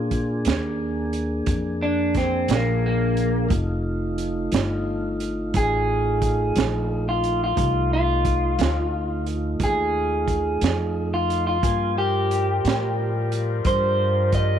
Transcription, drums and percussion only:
0.11 kick medium
0.11 closed hi-hat medium
0.45 snare medium
0.45 closed hi-hat medium
1.13 closed hi-hat soft
1.46 kick medium
1.46 closed hi-hat medium
2.14 kick medium
2.14 snare soft
2.14 closed hi-hat medium
2.48 snare medium
2.48 closed hi-hat medium
3.17 closed hi-hat medium
3.50 kick medium
3.50 closed hi-hat medium
4.18 closed hi-hat medium
4.52 snare loud
4.52 closed hi-hat medium
5.20 closed hi-hat medium
5.54 kick loud
5.54 closed hi-hat medium
6.22 kick medium
6.22 closed hi-hat medium
6.56 snare loud
6.56 closed hi-hat medium
7.24 closed hi-hat medium
7.57 kick loud
7.57 closed hi-hat medium
8.25 kick medium
8.25 closed hi-hat medium
8.59 snare medium
8.59 closed hi-hat medium
9.26 closed hi-hat medium
9.60 kick medium
9.60 closed hi-hat medium
10.28 kick medium
10.28 closed hi-hat medium
10.61 snare medium
10.61 closed hi-hat medium
11.30 closed hi-hat medium
11.63 kick loud
11.63 closed hi-hat medium
12.31 closed hi-hat medium
12.65 snare loud
12.65 closed hi-hat medium
13.32 closed hi-hat medium
13.65 kick medium
13.65 closed hi-hat medium
14.32 kick medium
14.32 closed hi-hat medium

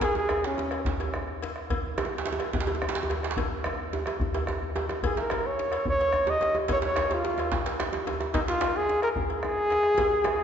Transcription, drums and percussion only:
0.01 bombo low loud
0.01 cowbell medium
0.01 djembe slap medium
0.01 djembe bass medium
0.15 djembe tone medium
0.29 bombo rim loud
0.29 cowbell soft
0.29 djembe tone medium
0.44 djembe slap medium
0.58 djembe slap medium
0.58 djembe tone medium
0.71 bombo rim medium
0.71 cowbell soft
0.85 bombo low medium
0.85 djembe slap medium
0.85 djembe bass medium
1.00 cowbell soft
1.00 djembe tone medium
1.14 bombo rim medium
1.14 djembe tone medium
1.43 cowbell soft
1.43 djembe slap medium
1.56 bombo rim medium
1.70 bombo low medium
1.70 cowbell medium
1.70 djembe bass medium
1.98 bombo rim medium
1.98 cowbell soft
1.98 djembe tone loud
1.98 djembe tone medium
2.05 djembe tone medium
2.18 djembe slap medium
2.26 djembe slap medium
2.33 djembe tone medium
2.40 bombo rim medium
2.40 cowbell soft
2.40 djembe tone medium
2.53 bombo low loud
2.53 djembe slap medium
2.53 djembe bass medium
2.60 djembe slap medium
2.67 cowbell soft
2.67 djembe tone medium
2.75 djembe tone medium
2.82 bombo rim medium
2.82 djembe tone medium
2.89 djembe slap medium
2.95 djembe slap medium
3.03 djembe tone medium
3.10 cowbell soft
3.10 djembe slap medium
3.10 djembe tone medium
3.23 bombo rim medium
3.23 djembe slap medium
3.31 djembe slap medium
3.37 bombo low loud
3.37 cowbell medium
3.37 djembe bass medium
3.64 bombo rim loud
3.64 cowbell soft
3.64 djembe tone medium
3.78 bombo rim soft
3.92 bombo rim soft
3.92 djembe slap medium
3.92 djembe tone loud
4.06 bombo rim medium
4.06 cowbell soft
4.06 djembe tone medium
4.20 bombo low medium
4.20 djembe bass medium
4.34 cowbell soft
4.34 djembe tone medium
4.47 bombo rim medium
4.47 djembe tone medium
4.47 djembe bass soft
4.63 djembe bass soft
4.76 cowbell soft
4.76 djembe slap soft
4.76 djembe tone loud
4.89 bombo rim medium
4.89 djembe slap medium
4.89 djembe tone medium
5.03 bombo low medium
5.03 cowbell medium
5.03 djembe bass medium
5.17 djembe tone loud
5.30 bombo rim medium
5.30 cowbell medium
5.30 djembe tone medium
5.59 djembe slap medium
5.72 bombo rim medium
5.72 cowbell medium
5.85 bombo low loud
5.85 djembe bass medium
6.01 cowbell soft
6.13 bombo rim medium
6.13 djembe tone medium
6.27 djembe tone loud
6.41 cowbell soft
6.41 djembe slap medium
6.41 djembe tone medium
6.55 bombo rim medium
6.55 djembe tone medium
6.68 bombo low loud
6.68 cowbell medium
6.68 djembe slap medium
6.68 djembe bass medium
6.82 djembe slap medium
6.96 bombo rim medium
6.96 cowbell soft
6.96 djembe slap medium
6.96 djembe tone medium
7.11 djembe tone medium
7.25 djembe slap medium
7.25 djembe tone medium
7.38 bombo rim medium
7.38 cowbell soft
7.38 djembe tone medium
7.52 bombo low medium
7.52 djembe slap medium
7.52 djembe bass medium
7.66 cowbell soft
7.66 djembe slap medium
7.80 bombo rim medium
7.80 djembe slap medium
7.80 djembe tone medium
7.93 djembe tone medium
8.07 cowbell medium
8.07 djembe slap medium
8.07 djembe tone medium
8.20 bombo rim medium
8.20 djembe tone medium
8.34 bombo low loud
8.34 cowbell medium
8.34 djembe slap medium
8.34 djembe bass medium
8.48 djembe slap medium
8.61 bombo rim medium
8.61 cowbell soft
8.61 djembe slap medium
8.61 djembe tone medium
8.89 djembe slap medium
9.02 bombo rim medium
9.02 cowbell medium
9.16 bombo low medium
9.16 djembe bass medium
9.30 cowbell soft
9.43 bombo rim medium
9.43 djembe tone medium
9.70 cowbell soft
9.70 djembe slap medium
9.83 bombo rim medium
9.98 bombo rim soft
9.98 bombo low medium
9.98 cowbell medium
9.98 djembe tone loud
9.98 djembe bass medium
10.12 bombo rim soft
10.24 bombo rim medium
10.24 cowbell soft
10.24 djembe tone loud
10.26 djembe tone medium
10.40 djembe slap soft

